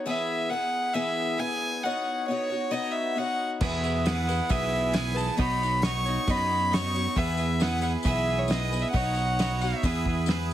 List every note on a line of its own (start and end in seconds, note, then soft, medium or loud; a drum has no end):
0.06 0.50 E3 medium
0.06 0.49 B3 medium
0.06 0.50 E4 medium
0.06 0.51 G#4 medium
0.06 0.53 B4 medium
0.06 0.51 E5 loud
0.50 0.94 B3 medium
0.50 0.94 E4 medium
0.50 0.94 G#4 medium
0.50 0.96 B4 medium
0.50 0.95 F#5 loud
0.94 1.39 E3 medium
0.94 1.37 B3 loud
0.94 1.38 E4 loud
0.94 1.38 G#4 loud
0.94 1.41 B4 medium
0.94 1.41 E5 loud
1.38 1.83 B3 medium
1.38 1.84 E4 medium
1.38 1.84 G#4 medium
1.38 1.85 B4 medium
1.38 1.85 G#5 loud
1.83 2.28 B3 medium
1.83 2.29 D#4 medium
1.83 2.29 F#4 medium
1.83 2.29 C#5 medium
1.83 2.27 F#5 loud
2.27 2.50 B3 medium
2.27 2.51 D#4 medium
2.27 2.50 F#4 medium
2.27 2.73 C#5 loud
2.31 2.49 C#5 medium
2.50 2.70 D#4 medium
2.50 2.71 F#4 medium
2.50 2.72 C#5 medium
2.71 3.15 B3 medium
2.71 3.16 D#4 loud
2.71 3.17 F#4 loud
2.71 3.17 C#5 loud
2.71 2.93 D#5 loud
2.91 3.19 E5 medium
3.15 3.62 B3 medium
3.15 3.61 D#4 medium
3.15 3.62 F#4 medium
3.15 3.62 C#5 medium
3.15 3.51 F#5 loud
3.61 4.40 E2 loud
3.61 4.06 E2 loud
3.61 4.06 B2 medium
3.61 4.06 E3 medium
3.61 4.06 B3 medium
3.61 4.06 E4 medium
3.61 4.07 G#4 medium
3.61 4.09 B4 medium
3.61 4.08 E5 medium
3.61 kick loud
3.61 crash loud
3.73 tambourine soft
3.84 4.03 E3 medium
3.84 4.05 B3 medium
3.84 4.05 E4 medium
3.84 4.06 G#4 medium
3.84 tambourine medium
3.96 tambourine soft
4.05 4.29 E3 medium
4.05 4.28 B3 medium
4.05 4.28 E4 medium
4.05 4.29 G#4 medium
4.05 4.52 F#5 loud
4.05 snare loud
4.05 open hi-hat medium
4.05 tambourine loud
4.10 4.28 B4 medium
4.17 tambourine soft
4.29 4.49 E3 medium
4.29 4.51 B3 medium
4.29 4.49 E4 soft
4.29 4.50 G#4 soft
4.29 4.50 B4 medium
4.29 tambourine medium
4.49 5.29 B1 loud
4.49 4.94 E2 loud
4.49 4.94 B2 loud
4.49 4.94 E3 medium
4.49 4.91 B3 medium
4.49 4.93 E4 loud
4.49 4.93 G#4 loud
4.49 4.95 B4 loud
4.49 4.96 E5 loud
4.49 kick loud
4.49 open hi-hat medium
4.49 tambourine medium
4.72 4.94 E3 medium
4.72 4.95 B3 medium
4.72 4.95 E4 medium
4.72 4.97 G#4 medium
4.72 tambourine soft
4.92 5.38 E3 medium
4.92 5.15 B3 medium
4.92 5.16 E4 medium
4.92 5.14 G#4 medium
4.92 5.13 B4 medium
4.92 5.18 G#5 loud
4.92 snare loud
4.92 open hi-hat medium
4.92 tambourine loud
5.14 5.37 E4 soft
5.14 5.38 G#4 soft
5.14 5.38 B4 medium
5.14 5.39 A5 loud
5.14 tambourine medium
5.28 tambourine soft
5.37 6.17 B1 loud
5.37 5.82 B3 medium
5.37 5.82 D#4 medium
5.37 5.83 F#4 medium
5.37 5.83 C#5 medium
5.37 5.84 B5 loud
5.37 kick loud
5.37 open hi-hat medium
5.52 tambourine soft
5.62 5.84 D#4 medium
5.62 5.85 F#4 medium
5.62 5.85 C#5 medium
5.62 tambourine medium
5.74 tambourine soft
5.82 6.05 B3 medium
5.82 6.06 D#4 medium
5.82 6.06 F#4 medium
5.82 6.32 C#6 loud
5.82 snare loud
5.82 open hi-hat medium
5.82 tambourine loud
5.86 6.04 C#5 medium
5.96 tambourine soft
6.05 6.28 D#4 soft
6.05 6.29 F#4 medium
6.05 6.27 C#5 medium
6.05 tambourine medium
6.27 7.06 F#2 loud
6.27 6.71 B3 loud
6.27 6.71 D#4 medium
6.27 6.73 F#4 medium
6.27 6.73 C#5 loud
6.27 6.75 B5 loud
6.27 kick loud
6.27 open hi-hat medium
6.27 tambourine medium
6.51 6.71 D#4 medium
6.51 6.72 F#4 medium
6.51 6.72 C#5 medium
6.51 tambourine soft
6.71 6.94 B3 medium
6.71 6.94 D#4 medium
6.71 6.95 F#4 medium
6.71 7.19 C#6 loud
6.71 snare loud
6.71 open hi-hat medium
6.71 tambourine loud
6.75 6.93 C#5 medium
6.94 7.17 F#4 medium
6.94 7.16 C#5 medium
6.94 tambourine loud
6.98 7.17 D#4 soft
7.07 tambourine soft
7.15 7.95 E2 loud
7.15 7.60 E3 medium
7.15 7.60 B3 medium
7.15 7.61 E4 medium
7.15 7.61 G#4 medium
7.15 7.64 B4 loud
7.15 7.63 E5 loud
7.15 kick loud
7.15 open hi-hat medium
7.27 tambourine soft
7.37 7.60 E4 medium
7.37 7.60 G#4 medium
7.37 7.62 B4 medium
7.37 tambourine medium
7.49 tambourine soft
7.60 8.06 B3 medium
7.60 8.06 E4 medium
7.60 8.06 G#4 medium
7.60 7.81 F#5 loud
7.60 snare loud
7.60 open hi-hat medium
7.60 tambourine loud
7.64 8.08 B4 medium
7.82 8.05 E4 medium
7.82 8.05 G#4 medium
7.82 8.06 B4 medium
7.82 7.92 F#5 loud
7.82 tambourine medium
8.03 8.83 B1 loud
8.03 8.50 E3 loud
8.03 8.48 B3 medium
8.03 8.40 E5 loud
8.03 kick loud
8.03 open hi-hat medium
8.03 tambourine loud
8.07 8.48 E4 loud
8.07 8.50 G#4 loud
8.07 8.51 B4 loud
8.26 8.50 G#4 medium
8.26 8.52 B4 medium
8.26 tambourine soft
8.30 8.50 E4 medium
8.38 8.52 C#5 medium
8.48 8.71 B3 medium
8.48 8.71 E4 medium
8.48 8.71 G#4 medium
8.48 8.70 B4 medium
8.48 8.83 D#5 loud
8.48 snare loud
8.48 open hi-hat medium
8.48 tambourine loud
8.71 8.93 E4 soft
8.71 8.94 G#4 medium
8.71 8.93 B4 medium
8.71 tambourine medium
8.81 8.90 E5 loud
8.81 tambourine soft
8.90 9.73 B1 loud
8.90 9.37 B3 medium
8.90 9.38 D#4 medium
8.90 9.38 F#4 medium
8.90 9.63 F#5 loud
8.90 kick loud
8.94 9.39 C#5 medium
8.94 open hi-hat medium
9.04 tambourine soft
9.14 9.40 F#4 medium
9.14 9.40 C#5 medium
9.14 tambourine medium
9.19 9.39 D#4 medium
9.27 tambourine soft
9.39 9.61 B3 medium
9.39 9.61 D#4 medium
9.39 9.61 F#4 medium
9.39 9.61 C#5 medium
9.39 snare loud
9.39 open hi-hat medium
9.39 tambourine loud
9.51 tambourine soft
9.61 9.84 D#4 soft
9.61 9.84 F#4 medium
9.61 9.83 C#5 medium
9.61 10.27 E5 loud
9.61 tambourine medium
9.83 10.54 E2 loud
9.83 10.27 E3 medium
9.83 10.25 B3 medium
9.83 10.26 E4 medium
9.83 10.27 G#4 loud
9.83 10.28 B4 medium
9.83 kick loud
9.83 open hi-hat medium
9.83 tambourine medium
9.96 tambourine soft
10.06 10.30 G#4 medium
10.06 10.30 B4 medium
10.06 kick medium
10.10 10.28 E4 medium
10.17 tambourine soft
10.26 10.54 B3 medium
10.26 10.54 E4 medium
10.26 10.54 G#4 medium
10.26 10.54 B4 medium
10.26 snare loud
10.26 open hi-hat medium
10.26 tambourine loud
10.39 tambourine soft